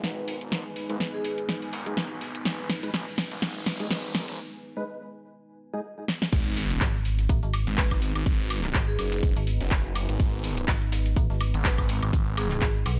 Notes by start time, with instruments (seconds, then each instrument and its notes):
Already playing: ambient pad G#3 B3 D#4 B4 G#5, riser
0.04 detuned saw bass G#1, vibraphone B4, snare, closed hi-hat
0.28 open hi-hat
0.41 detuned saw bass G#1, closed hi-hat
0.52 snare, closed hi-hat
0.76 open hi-hat
0.90 detuned saw bass G#1, synth stab G#3 D#4 B4, closed hi-hat
1.00 snare, closed hi-hat
1.14 vibraphone G#4
1.24 vibraphone G#4, open hi-hat
1.38 closed hi-hat
1.49 snare, closed hi-hat
1.62 open hi-hat
1.73 detuned saw bass F#1, open hi-hat
1.86 synth stab G#3 D#4 G#4, closed hi-hat
1.97 snare, closed hi-hat
2.11 detuned saw bass B1
2.21 open hi-hat
2.35 detuned saw bass G#1, closed hi-hat
2.45 detuned saw bass G#1, snare, closed hi-hat
2.70 snare, open hi-hat
2.83 synth stab G#3 D#4 B4, closed hi-hat
2.94 detuned saw bass A1, snare, closed hi-hat
3.18 snare, open hi-hat
3.31 detuned saw bass G#1, closed hi-hat
3.42 snare, closed hi-hat
3.56 detuned saw bass G#1
3.66 snare, open hi-hat
3.80 synth stab G#3 D#4 G#4, closed hi-hat
3.91 detuned saw bass G#1, vibraphone B4, snare, closed hi-hat
4.15 snare, open hi-hat
4.28 detuned saw bass G#1, closed hi-hat
4.77 synth stab G#3 D#4 B4
5.73 synth stab G#3 D#4 G#4
6.08 snare
6.22 snare
6.32 detuned saw bass G#1, ambient pad B3 D#4 B4, kick, closed hi-hat, crash, impact, shaker
6.46 shaker
6.57 snare, closed hi-hat, open hi-hat, shaker
6.70 closed hi-hat, shaker
6.81 fm bass G#1, kick, snare, clap, closed hi-hat, shaker
6.94 snare, shaker
7.05 closed hi-hat, open hi-hat, shaker
7.18 snare, closed hi-hat, shaker
7.29 fm bass A1, kick, closed hi-hat, shaker
7.42 fm bass G#1, closed hi-hat, shaker
7.54 closed hi-hat, open hi-hat, high woodblock, shaker
7.67 detuned saw bass G#1, closed hi-hat, shaker
7.78 vibraphone B4, kick, snare, clap, closed hi-hat, open hi-hat, shaker
7.91 kick, snare, high woodblock, shaker
8.02 closed hi-hat, open hi-hat, shaker
8.15 detuned saw bass G#1, closed hi-hat, high woodblock, shaker
8.26 detuned saw bass G#1, kick, closed hi-hat, shaker
8.41 shaker
8.50 closed hi-hat, open hi-hat, high woodblock, shaker
8.64 clap, closed hi-hat, shaker
8.74 fm bass G#1, kick, snare, clap, closed hi-hat, shaker
8.88 vibraphone G#4, shaker
8.98 detuned saw bass F#1, vibraphone G#4, closed hi-hat, open hi-hat, high woodblock, shaker
9.12 snare, closed hi-hat, shaker
9.23 kick, closed hi-hat, shaker
9.36 fm bass G#1, open hi-hat, shaker
9.47 closed hi-hat, open hi-hat, shaker
9.60 detuned saw bass F#1, closed hi-hat, shaker
9.71 kick, snare, clap, closed hi-hat, shaker
9.86 shaker
9.95 closed hi-hat, open hi-hat, high woodblock, shaker
10.09 detuned saw bass G#1, closed hi-hat, shaker
10.20 detuned saw bass G#1, kick, closed hi-hat, shaker
10.33 shaker
10.44 snare, closed hi-hat, open hi-hat, shaker
10.56 closed hi-hat, shaker
10.68 fm bass G#1, kick, snare, clap, closed hi-hat, shaker
10.82 snare, shaker
10.92 snare, closed hi-hat, open hi-hat, shaker
11.06 snare, closed hi-hat, shaker
11.16 fm bass A1, kick, closed hi-hat, shaker
11.30 fm bass G#1, snare, shaker
11.40 closed hi-hat, open hi-hat, high woodblock, shaker
11.54 detuned saw bass G#1, closed hi-hat, shaker
11.65 vibraphone B4, kick, snare, clap, closed hi-hat, open hi-hat, shaker
11.78 kick, snare, high woodblock, shaker
11.89 closed hi-hat, open hi-hat, shaker
12.02 detuned saw bass G#1, closed hi-hat, high woodblock, shaker
12.13 detuned saw bass G#1, kick, closed hi-hat, shaker
12.26 shaker
12.37 vibraphone G#4, closed hi-hat, open hi-hat, high woodblock, shaker
12.51 vibraphone G#4, clap, closed hi-hat, shaker
12.62 fm bass G#1, kick, snare, clap, closed hi-hat, shaker
12.75 shaker
12.86 fm bass B1, closed hi-hat, open hi-hat, high woodblock, shaker